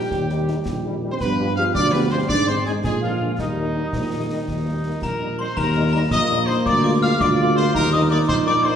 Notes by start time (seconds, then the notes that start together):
Already playing: D#3 G3 G4 G5
0.11 D#2, concert bass drum, snare
0.29 G3 D#4 G4, snare
0.48 G3 D#4 G4, snare
0.66 A#1, concert bass drum, snare
0.85 G3 D#4 G4
1.03 G3 D#4 G4
1.12 C4 C5 C6
1.20 G2 F3 G3 B3 B4 B5, concert bass drum, snare, crash
1.39 F3 D4 G4
1.56 F3 D4 F4 G4 F5 F6
1.75 D2 F3 G3 D4 D5 D6, concert bass drum, snare
1.92 F3 B3 D4 G4 B4 B5
2.10 F3 C4 D4 G4 C5 C6
2.29 G#2 D#3 G#3 D4 D5 D6, concert bass drum, snare
2.47 G#3 C4 D#4 C5 C6, snare
2.66 G#3 C4 D#4 G#4 G#5, snare
2.84 A#2 D3 G#3 G#4 G#5, concert bass drum, snare
3.02 F3 G#3 A#3 D4 F4 F5
3.20 G#3 A#3 D4
3.39 D#2 D#3 G3 D#4 D#5, concert bass drum, snare
3.57 G3 A#3 D#4
3.75 G3 A#3 D#4
3.93 A#1, concert bass drum, snare
4.11 G3 A#3 D#4
4.30 G3 A#3 D#4
4.48 D#2, concert bass drum, snare
4.66 G3 A#3 D#4
4.84 G3 A#3 D#4
5.02 A#1 A#4 A#5, concert bass drum, snare
5.20 G3 A#3 D#4
5.38 G3 A#3 D#4 C5 C6
5.57 D#2 A#3 A#4 A#5, concert bass drum, snare, crash
5.75 G3 A#3 D#4
5.93 G3 A#3 D#4 A#4 A#5
6.11 A#1 D#5 D#6, concert bass drum, snare
6.30 G3 A#3 D#4
6.47 G3 A#3 D#4 C5 C6
6.66 D2 D5 D6, concert bass drum, snare
6.83 G#3 A#3 F4 D5 D6
7.01 G#3 A#3 F4 F5 F6
7.20 D2 F4 D5 D6, concert bass drum, snare
7.38 G#3 A#3 F4
7.55 G#3 A#3 F4 C5 C6, snare
7.74 D#2 D#4 A#4 A#5, concert bass drum, snare
7.92 G3 A#3 D#4 D#5 D#6
8.10 G3 A#3 D#4 D5 D6
8.28 A#1 C5 C6, concert bass drum, snare
8.46 G3 A#3 D#4 D5 D6
8.64 G3 A#3 D#4 C5 C6